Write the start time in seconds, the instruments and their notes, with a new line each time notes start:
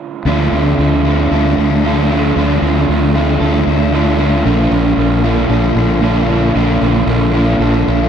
0.25 fingered electric bass D2, overdriven electric guitar D3 A3 D4 F4, clean electric guitar F3
0.52 fingered electric bass D2, overdriven electric guitar A3 D4 F4, clean electric guitar C4
0.78 fingered electric bass D2, overdriven electric guitar D3 A3 D4 F4, clean electric guitar F3
1.04 overdriven electric guitar A3 D4 F4, clean electric guitar C4
1.31 fingered electric bass D2, overdriven electric guitar D3 A3 D4 F4, clean electric guitar A4
1.57 fingered electric bass D2, overdriven electric guitar A3 D4 F4, clean electric guitar D4
1.83 overdriven electric guitar D3 A3 D4 F4, clean electric guitar A4
2.09 overdriven electric guitar A3 D4 F4, clean electric guitar D4
2.35 fingered electric bass D2, overdriven electric guitar D3 A3 D4, clean electric guitar F3
2.39 overdriven electric guitar F4
2.61 fingered electric bass D2, overdriven electric guitar A3 D4 F4, clean electric guitar C4
2.87 fingered electric bass D2, overdriven electric guitar D3 A3 D4, clean electric guitar F3
2.92 overdriven electric guitar F4
3.14 clean electric guitar C4, overdriven electric guitar D4 F4
3.18 overdriven electric guitar A3
3.40 fingered electric bass D2, overdriven electric guitar D3 A3 D4 F4, clean electric guitar A4
3.65 fingered electric bass D2, overdriven electric guitar A3 D4 F4, clean electric guitar D4
3.93 overdriven electric guitar D3 A3 D4 F4, clean electric guitar A4
4.18 overdriven electric guitar A3 D4 F4, clean electric guitar D4
4.44 fingered electric bass A#1, overdriven electric guitar A#2 D3 A#3 D4 F4, clean electric guitar F3
4.71 fingered electric bass A#1, clean electric guitar A#3, overdriven electric guitar A#3 D4 F4
4.97 fingered electric bass A#1, overdriven electric guitar D3 A#3 D4 F4, clean electric guitar F3
5.24 clean electric guitar A#3, overdriven electric guitar A#3 D4 F4
5.49 fingered electric bass A#1, overdriven electric guitar A#2 D3 A#3 D4 F4, clean electric guitar A4
5.75 fingered electric bass A#1, clean electric guitar D4, overdriven electric guitar D4 F4
5.80 overdriven electric guitar A#3
6.02 overdriven electric guitar A#2 D3 A#3 D4 F4, clean electric guitar A4
6.30 overdriven electric guitar A#3 D4 F4, clean electric guitar D4
6.55 fingered electric bass A#1, overdriven electric guitar A#2 D3 A#3 D4, clean electric guitar F3
6.59 overdriven electric guitar F4
6.81 fingered electric bass A#1, clean electric guitar A#3, overdriven electric guitar A#3 D4 F4
7.07 fingered electric bass A#1, overdriven electric guitar D3 A#3 D4 F4, clean electric guitar F3
7.34 clean electric guitar A#3, overdriven electric guitar A#3 D4 F4
7.59 fingered electric bass A#1, overdriven electric guitar A#2 D3 A#3, clean electric guitar A4
7.63 overdriven electric guitar D4 F4
7.87 fingered electric bass A#1, overdriven electric guitar A#3 D4 F4, clean electric guitar D4